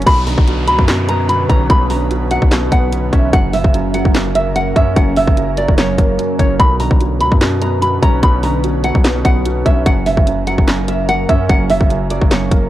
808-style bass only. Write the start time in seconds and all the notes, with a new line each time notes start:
0.07 B1
0.38 B1
0.68 C#2
0.79 F#2
1.49 B1
1.70 B1
2.42 B1
2.72 B1
3.13 B1
3.33 F#1
3.64 F#1
4.05 F#1
4.76 F#2
4.96 F#1
5.27 F#1
5.68 F#1
5.98 F#1
6.39 F#1
6.60 B1
6.91 B1
7.21 C#2
7.32 F#2
8.03 B1
8.23 B1
8.95 B1
9.25 B1
9.66 B1
9.86 F#1
10.17 F#1
10.58 F#1
11.29 F#2
11.49 F#1
11.81 F#1
12.22 F#1
12.51 F#1